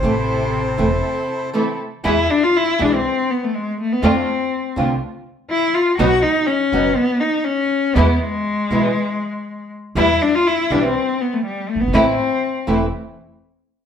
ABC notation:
X:1
M:4/4
L:1/16
Q:1/4=121
K:Ephr
V:1 name="Bandoneon"
c12 z4 | z16 | z16 | z16 |
z16 | z16 | z16 |]
V:2 name="Cello"
C,12 z4 | E2 D F E2 D C3 B, A, ^G,2 A, B, | C6 z6 E2 F2 | ^F2 ^D2 ^C4 B,2 D2 C4 |
B,2 ^G,12 z2 | E2 D F E2 D C3 B, A, G,2 A, B, | C6 z8 z2 |]
V:3 name="String section"
[CEA]6 [CEA]6 [CEA]2 z2 | [B,E^G]2 z4 [B,EG]2 z8 | [A,DF]2 z4 [A,DF]2 z8 | [^F,B,^D]2 z4 [F,B,D]2 z8 |
[^G,B,E]2 z4 [G,B,E]2 z8 | [G,B,E]2 z4 [G,B,E]2 z8 | [A,CE]2 z4 [A,CE]2 z8 |]
V:4 name="Nylon-string guitar"
[E,A,CE]2 z4 [E,A,CE]2 z4 [E,A,CE]2 z2 | [B,,E,^G,B,E]2 z4 [B,,E,G,B,E]2 z8 | [D,A,CF]2 z4 [D,A,CF]2 z8 | [B,,^F,B,^D^F]2 z4 [B,,F,B,DF]2 z8 |
[B,,E,^G,B,E]2 z4 [B,,E,G,B,E]2 z8 | [B,,E,G,B,E]2 z4 [B,,E,G,B,E]2 z8 | [E,A,CE]2 z4 [E,A,CE]2 z8 |]
V:5 name="Upright bass" clef=bass
A,,,4- A,,,3/2 z/2 E,,,3/2 z8 z/2 | E,,3/2 z4 z/2 B,,,3/2 z8 z/2 | F,,3/2 z4 z/2 C,,3/2 z8 z/2 | B,,,3/2 z4 z/2 ^F,,,3/2 z8 z/2 |
E,,3/2 z4 z/2 B,,,3/2 z8 z/2 | E,,3/2 z4 z/2 B,,,3/2 z6 z ^F,,,/2 G,,,/2 ^G,,,/2 | A,,,3/2 z4 z/2 E,,,3/2 z8 z/2 |]